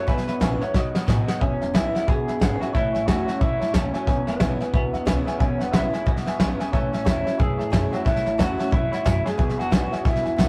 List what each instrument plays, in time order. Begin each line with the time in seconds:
0.07 upright bass E1, steel-string acoustic guitar E2, clean electric guitar E2 B2 B4, upright piano B4 E5 G#5, kick, snare
0.18 snare
0.27 upright bass E1, upright piano B4 E5 B5, snare
0.40 upright bass A#1, clean electric guitar E2 C#3, steel-string acoustic guitar E3 G#3 B3 E4, upright piano B4 E5 G#5, kick, snare, hi-hat pedal
0.60 clean electric guitar E2 C#3 C#5, steel-string acoustic guitar B3 E4, upright piano B4 E5 F#5, muted upright bass stroke, snare
0.74 upright bass B1, clean electric guitar B2 F#3 D#5, steel-string acoustic guitar B2, upright piano B4 D#5 F#5, kick, snare
0.94 upright bass B2, upright piano B4 D#5 F#5, snare
1.07 upright bass A2, clean electric guitar B2 G#3, steel-string acoustic guitar F#3 B3 D#4 F#4, upright piano B4 D#5 G#5, kick, snare, hi-hat pedal
1.27 clean electric guitar B2 G#3, upright piano B4 D#5 F#5, muted upright bass stroke, snare
1.40 upright bass E1, steel-string acoustic guitar E2, clean electric guitar E2 B2 C#4, upright piano B4 E5 G#5, kick, snare
1.60 upright bass E1, upright piano B4 E5 G#5, snare
1.74 upright bass B1, clean electric guitar E2 C#3 E4, steel-string acoustic guitar E3 G#3 B3 E4, upright piano B4 E5 G#5, kick, snare, hi-hat pedal
1.93 clean electric guitar E2 C#3, steel-string acoustic guitar B3 E4, upright piano B4 E5 F#5, muted upright bass stroke, snare
2.07 upright bass C#2, clean electric guitar E2 B2 G#4, steel-string acoustic guitar B2, upright piano B4 E5 G#5, kick, snare
2.28 upright bass E2, upright piano B4 E5 B5, snare
2.40 upright bass G#1, clean electric guitar E2 C#3 G#4, steel-string acoustic guitar E3 G#3 B3 E4, upright piano B4 E5 F#5, kick, snare, hi-hat pedal
2.60 clean electric guitar E2 C#3 F#4, steel-string acoustic guitar B3 E4, upright piano B4 E5 G#5, muted upright bass stroke, snare
2.73 upright bass A1, clean electric guitar A2 E3 E4, steel-string acoustic guitar A2, upright piano C#5 E5 A5, kick, snare
2.93 upright bass A1, upright piano C#5 E5 G#5, snare
3.06 upright bass E2, clean electric guitar A2 F#3 F#4, steel-string acoustic guitar E3 A3 C#4, upright piano C#5 E5 G#5, kick, snare, hi-hat pedal
3.10 steel-string acoustic guitar E4
3.26 clean electric guitar A2 F#3, steel-string acoustic guitar E4, upright piano C#5 E5 A5, muted upright bass stroke, snare
3.31 steel-string acoustic guitar C#4
3.39 upright bass F#2, clean electric guitar A2 E3 E4, steel-string acoustic guitar G#3, upright piano C#5 E5 A5, kick, snare
3.59 upright bass A2, upright piano C#5 E5 A5, snare
3.72 upright bass D#2, steel-string acoustic guitar F#2, clean electric guitar A2 F#3 C#4, upright piano C#5 E5 A5, kick, snare, hi-hat pedal
3.93 clean electric guitar A2 F#3 C#4, upright piano C#5 E5 G#5, muted upright bass stroke, snare
4.06 upright bass E1, clean electric guitar E2 B2, upright piano B4 E5 G#5, kick, snare
4.27 upright bass E1, clean electric guitar B3, upright piano B4 E5 G#5, snare
4.39 upright bass B1, clean electric guitar E2 C#3, steel-string acoustic guitar E3 G#3 B3 E4, upright piano B4 E5 G#5, kick, snare, hi-hat pedal
4.59 clean electric guitar E2 C#3, steel-string acoustic guitar E4, upright piano B4 E5 G#5, muted upright bass stroke, snare
4.63 steel-string acoustic guitar B3
4.73 upright bass C#2, clean electric guitar E2 B2 B3, steel-string acoustic guitar B2, upright piano B4 E5 G#5, kick, snare
4.92 upright bass E2, upright piano B4 E5 F#5, snare
5.05 upright bass C#2, clean electric guitar E2 C#3, steel-string acoustic guitar E3 G#3 B3 E4, upright piano B4 E5 G#5, kick, snare, hi-hat pedal
5.25 clean electric guitar E2 C#3, steel-string acoustic guitar B3 E4, upright piano B4 E5 G#5, muted upright bass stroke, snare
5.38 upright bass E1, clean electric guitar E2 B2 C#4, upright piano B4 E5 G#5, kick, snare
5.57 upright bass E1, upright piano B4 E5 F#5, snare
5.62 clean electric guitar B3
5.71 upright bass B1, clean electric guitar E2 C#3, steel-string acoustic guitar E3 G#3 B3 E4, upright piano B4 E5 F#5, kick, snare, hi-hat pedal
5.76 clean electric guitar E4
5.92 clean electric guitar E2 C#3, steel-string acoustic guitar B3 E4, upright piano B4 E5 G#5, muted upright bass stroke, snare
6.05 upright bass C#2, clean electric guitar E2 B2, steel-string acoustic guitar B2, upright piano B4 E5 G#5, kick, snare
6.17 snare
6.26 upright bass E2, upright piano B4 E5 G#5, snare
6.38 upright bass B1, clean electric guitar E2 C#3, steel-string acoustic guitar E3 G#3 B3 E4, upright piano B4 E5 G#5 B5, kick, snare, hi-hat pedal
6.58 clean electric guitar E2 C#3, steel-string acoustic guitar B3 E4, upright piano B4 E5 G#5, muted upright bass stroke, snare
6.72 upright bass A1, clean electric guitar A2 E3 C#4, steel-string acoustic guitar A2, upright piano C#5 E5 A5, kick, snare
6.92 upright bass A1, upright piano C#5 E5 A5, snare
7.05 upright bass E2, clean electric guitar A2 F#3 E4, steel-string acoustic guitar E3 A3 C#4 E4, upright piano C#5 E5 A5, kick, snare, hi-hat pedal
7.25 clean electric guitar A2 F#3, steel-string acoustic guitar C#4 E4, upright piano C#5 E5 A5, muted upright bass stroke, snare
7.38 steel-string acoustic guitar E2, upright bass F#2, clean electric guitar A2 E3 G#4, upright piano C#5 E5 A5, kick, snare
7.58 upright bass A2, upright piano C#5 E5 A5, snare
7.70 upright bass F#2, clean electric guitar A2 F#3 G#4, steel-string acoustic guitar E3 A3 C#4 E4, upright piano C#5 E5 A5, kick, snare, hi-hat pedal
7.91 clean electric guitar A2 F#3 F#4, steel-string acoustic guitar C#4 E4, upright piano C#5 E5 A5, muted upright bass stroke, snare
8.05 upright bass A1, steel-string acoustic guitar A2, clean electric guitar A2 E3 E4, upright piano C#5 E5 A5, kick, snare
8.16 snare
8.25 upright bass A1, upright piano C#5 E5 A5, snare
8.38 upright bass E2, clean electric guitar A2 F#3 F#4, steel-string acoustic guitar E3 A3 C#4 E4, upright piano C#5 E5 A5, kick, snare, hi-hat pedal
8.57 clean electric guitar A2 F#3, steel-string acoustic guitar C#4 E4, upright piano C#5 E5 A5, muted upright bass stroke, snare
8.71 upright bass F#2, clean electric guitar A2 E3 E4, steel-string acoustic guitar G#3, upright piano C#5 E5 A5, kick, snare
8.91 upright bass A2, clean electric guitar E4, upright piano C#5 E5 F#5, snare
9.04 steel-string acoustic guitar F#2, upright bass F#2, clean electric guitar A2 F#3 E4, upright piano C#5 E5 G#5, kick, snare, hi-hat pedal
9.25 clean electric guitar A2 F#3 G#4, upright piano C#5 E5 A5, muted upright bass stroke, snare
9.37 upright bass E1, clean electric guitar E2 B2, steel-string acoustic guitar E2, upright piano B4 E5 G#5, kick, snare
9.49 snare
9.57 upright bass E1, clean electric guitar F#4, upright piano B4 E5 G#5, snare
9.70 upright bass B1, clean electric guitar E2 C#3, steel-string acoustic guitar E3 G#3 B3 E4, upright piano B4 E5 G#5, kick, snare, hi-hat pedal
9.91 clean electric guitar E2 C#3, steel-string acoustic guitar B3 E4, upright piano B4 E5 G#5, muted upright bass stroke, snare
10.03 upright bass C#2, clean electric guitar E2 B2 E4, steel-string acoustic guitar B2, upright piano B4 E5 G#5, kick, snare
10.16 snare
10.22 upright bass E2, upright piano B4 E5 G#5, snare
10.36 upright bass C#2, clean electric guitar E2 C#3, steel-string acoustic guitar E3 G#3 B3 E4, upright piano B4 E5 F#5, kick, snare, hi-hat pedal